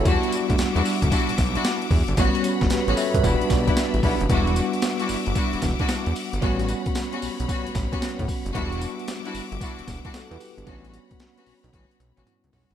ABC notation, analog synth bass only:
X:1
M:4/4
L:1/16
Q:"Swing 16ths" 1/4=113
K:Edor
V:1 name="Analog synth bass" clef=bass
E,, z2 D,, E,, E,, z D,, z B,,, B,,,2 z2 E,, G,,, | A,,, z2 G,,, A,,, A,,, z G,,, E,,, B,,, B,,,2 z A,,, B,,, F,,, | E,,,3 z3 G,,, G,,, z E,,, E,,, z2 E,, z G,,, | A,,,3 z3 B,,, B,,, z A,,, A,,, z2 A,, z F,,, |
E,,,3 z3 G,,, G,,, z E,,, E,,, z2 E,, z G,,, | A,,,3 z3 B,,, B,,, A,,, z B,,, A,,, z C,, B,,, G,,, |]